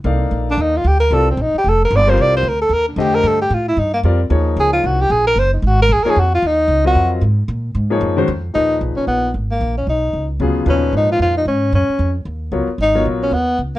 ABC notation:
X:1
M:4/4
L:1/8
Q:"Swing" 1/4=226
K:Eblyd
V:1 name="Tenor saxophone"
z3 D E F G B | A C E G A B d c | d c B A B D G B | A G F =E _E B, z2 |
z2 _A F _G =G A B | c E _G B (3_A B A G F | E3 _G2 z3 | z8 |
[K:Ebm] E2 z D C2 z B,- | B, D E3 z3 | D2 E F F E D2 | D3 z4 z |
E2 z D C2 z2 |]
V:2 name="Grand piano"
[B,EAdf]4- [B,EAdf] z3 | [G,CFBd] z6 [G,CFBc]- | [G,CFBc]2 z4 [D,A,Gce]2- | [D,A,Gce] z4 z [G,CFBd] z |
[F,B,E_A_d]4- [F,B,EAd] z3 | z4 z [F,B,E_A_d] z2 | z3 [_G,CFBe]3 z2 | z3 [F,B,E_A_d]2 [E,_A,_D_Gc] z2 |
[K:Ebm] [B,,F,EAc]4- [B,,F,EAc] z3 | z6 [D,G,CFA]2 | [B,,F,EAc]4- [B,,F,EAc] z3 | z6 [G,CFBd] z |
z [G,CFBd]3 z4 |]
V:3 name="Upright bass" clef=bass
C,,2 B,,,2 E,,2 D,,2 | C,,2 B,,, z F,,,2 G,,,2 | C,,2 D,,2 E,,2 F,,2 | G,,2 A,,2 G,,2 F,,2 |
E,,2 _D,,2 C,,2 B,,,2 | _G,,,2 _A,,,2 B,,, z F,,2 | E,,2 _D,,2 F,,2 _A,,2 | B,,2 _A,,2 _G,,2 F,,2 |
[K:Ebm] E,,2 C,, z B,,,2 A,,,2 | B,,,2 C,,2 D,,2 =D,,2 | E,,2 A,,2 F,,2 A,,2 | G,, z F,,2 E,,2 D,, z |
A,,,2 B,,,2 E,,2 D,,2 |]